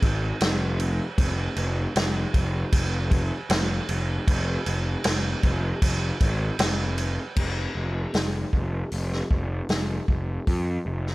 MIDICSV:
0, 0, Header, 1, 3, 480
1, 0, Start_track
1, 0, Key_signature, -4, "minor"
1, 0, Tempo, 774194
1, 732, Time_signature, 4, 2, 24, 8
1, 6912, End_track
2, 0, Start_track
2, 0, Title_t, "Picked electric bass"
2, 0, Program_c, 0, 34
2, 14, Note_on_c, 0, 32, 93
2, 193, Note_off_c, 0, 32, 0
2, 256, Note_on_c, 0, 29, 89
2, 613, Note_off_c, 0, 29, 0
2, 734, Note_on_c, 0, 29, 94
2, 912, Note_off_c, 0, 29, 0
2, 971, Note_on_c, 0, 29, 90
2, 1150, Note_off_c, 0, 29, 0
2, 1213, Note_on_c, 0, 29, 83
2, 1391, Note_off_c, 0, 29, 0
2, 1452, Note_on_c, 0, 29, 87
2, 1630, Note_off_c, 0, 29, 0
2, 1691, Note_on_c, 0, 29, 88
2, 2049, Note_off_c, 0, 29, 0
2, 2170, Note_on_c, 0, 29, 91
2, 2348, Note_off_c, 0, 29, 0
2, 2411, Note_on_c, 0, 29, 86
2, 2589, Note_off_c, 0, 29, 0
2, 2651, Note_on_c, 0, 29, 87
2, 2829, Note_off_c, 0, 29, 0
2, 2892, Note_on_c, 0, 29, 88
2, 3070, Note_off_c, 0, 29, 0
2, 3132, Note_on_c, 0, 29, 85
2, 3309, Note_off_c, 0, 29, 0
2, 3368, Note_on_c, 0, 29, 83
2, 3547, Note_off_c, 0, 29, 0
2, 3608, Note_on_c, 0, 29, 85
2, 3787, Note_off_c, 0, 29, 0
2, 3849, Note_on_c, 0, 32, 93
2, 4028, Note_off_c, 0, 32, 0
2, 4086, Note_on_c, 0, 29, 86
2, 4446, Note_off_c, 0, 29, 0
2, 4569, Note_on_c, 0, 29, 84
2, 4749, Note_off_c, 0, 29, 0
2, 4806, Note_on_c, 0, 29, 76
2, 4988, Note_off_c, 0, 29, 0
2, 5049, Note_on_c, 0, 29, 79
2, 5230, Note_off_c, 0, 29, 0
2, 5289, Note_on_c, 0, 29, 77
2, 5470, Note_off_c, 0, 29, 0
2, 5531, Note_on_c, 0, 29, 79
2, 5712, Note_off_c, 0, 29, 0
2, 5771, Note_on_c, 0, 29, 84
2, 5952, Note_off_c, 0, 29, 0
2, 6009, Note_on_c, 0, 29, 81
2, 6191, Note_off_c, 0, 29, 0
2, 6253, Note_on_c, 0, 29, 89
2, 6434, Note_off_c, 0, 29, 0
2, 6495, Note_on_c, 0, 41, 83
2, 6675, Note_off_c, 0, 41, 0
2, 6733, Note_on_c, 0, 29, 81
2, 6912, Note_off_c, 0, 29, 0
2, 6912, End_track
3, 0, Start_track
3, 0, Title_t, "Drums"
3, 15, Note_on_c, 9, 36, 92
3, 15, Note_on_c, 9, 49, 61
3, 77, Note_off_c, 9, 36, 0
3, 77, Note_off_c, 9, 49, 0
3, 252, Note_on_c, 9, 49, 78
3, 258, Note_on_c, 9, 38, 113
3, 314, Note_off_c, 9, 49, 0
3, 320, Note_off_c, 9, 38, 0
3, 494, Note_on_c, 9, 49, 60
3, 556, Note_off_c, 9, 49, 0
3, 731, Note_on_c, 9, 36, 112
3, 732, Note_on_c, 9, 49, 81
3, 793, Note_off_c, 9, 36, 0
3, 794, Note_off_c, 9, 49, 0
3, 970, Note_on_c, 9, 49, 58
3, 1032, Note_off_c, 9, 49, 0
3, 1213, Note_on_c, 9, 49, 76
3, 1220, Note_on_c, 9, 38, 114
3, 1275, Note_off_c, 9, 49, 0
3, 1282, Note_off_c, 9, 38, 0
3, 1451, Note_on_c, 9, 36, 83
3, 1451, Note_on_c, 9, 49, 55
3, 1513, Note_off_c, 9, 36, 0
3, 1513, Note_off_c, 9, 49, 0
3, 1689, Note_on_c, 9, 49, 80
3, 1690, Note_on_c, 9, 36, 96
3, 1751, Note_off_c, 9, 49, 0
3, 1752, Note_off_c, 9, 36, 0
3, 1930, Note_on_c, 9, 36, 96
3, 1931, Note_on_c, 9, 49, 58
3, 1992, Note_off_c, 9, 36, 0
3, 1993, Note_off_c, 9, 49, 0
3, 2168, Note_on_c, 9, 49, 87
3, 2175, Note_on_c, 9, 38, 114
3, 2230, Note_off_c, 9, 49, 0
3, 2237, Note_off_c, 9, 38, 0
3, 2410, Note_on_c, 9, 49, 60
3, 2472, Note_off_c, 9, 49, 0
3, 2651, Note_on_c, 9, 36, 114
3, 2652, Note_on_c, 9, 49, 85
3, 2713, Note_off_c, 9, 36, 0
3, 2714, Note_off_c, 9, 49, 0
3, 2891, Note_on_c, 9, 49, 64
3, 2953, Note_off_c, 9, 49, 0
3, 3125, Note_on_c, 9, 49, 92
3, 3132, Note_on_c, 9, 38, 117
3, 3187, Note_off_c, 9, 49, 0
3, 3194, Note_off_c, 9, 38, 0
3, 3368, Note_on_c, 9, 49, 59
3, 3369, Note_on_c, 9, 36, 79
3, 3430, Note_off_c, 9, 49, 0
3, 3431, Note_off_c, 9, 36, 0
3, 3608, Note_on_c, 9, 36, 95
3, 3608, Note_on_c, 9, 49, 84
3, 3670, Note_off_c, 9, 36, 0
3, 3670, Note_off_c, 9, 49, 0
3, 3847, Note_on_c, 9, 49, 65
3, 3848, Note_on_c, 9, 36, 84
3, 3909, Note_off_c, 9, 49, 0
3, 3910, Note_off_c, 9, 36, 0
3, 4086, Note_on_c, 9, 49, 84
3, 4092, Note_on_c, 9, 38, 115
3, 4148, Note_off_c, 9, 49, 0
3, 4154, Note_off_c, 9, 38, 0
3, 4326, Note_on_c, 9, 49, 64
3, 4388, Note_off_c, 9, 49, 0
3, 4566, Note_on_c, 9, 57, 93
3, 4567, Note_on_c, 9, 36, 106
3, 4628, Note_off_c, 9, 57, 0
3, 4629, Note_off_c, 9, 36, 0
3, 5045, Note_on_c, 9, 46, 49
3, 5052, Note_on_c, 9, 38, 112
3, 5107, Note_off_c, 9, 46, 0
3, 5114, Note_off_c, 9, 38, 0
3, 5288, Note_on_c, 9, 36, 72
3, 5350, Note_off_c, 9, 36, 0
3, 5528, Note_on_c, 9, 46, 47
3, 5590, Note_off_c, 9, 46, 0
3, 5657, Note_on_c, 9, 38, 31
3, 5719, Note_off_c, 9, 38, 0
3, 5770, Note_on_c, 9, 36, 81
3, 5832, Note_off_c, 9, 36, 0
3, 6007, Note_on_c, 9, 46, 47
3, 6014, Note_on_c, 9, 38, 111
3, 6069, Note_off_c, 9, 46, 0
3, 6076, Note_off_c, 9, 38, 0
3, 6251, Note_on_c, 9, 36, 80
3, 6313, Note_off_c, 9, 36, 0
3, 6492, Note_on_c, 9, 46, 48
3, 6493, Note_on_c, 9, 36, 102
3, 6554, Note_off_c, 9, 46, 0
3, 6555, Note_off_c, 9, 36, 0
3, 6862, Note_on_c, 9, 38, 29
3, 6912, Note_off_c, 9, 38, 0
3, 6912, End_track
0, 0, End_of_file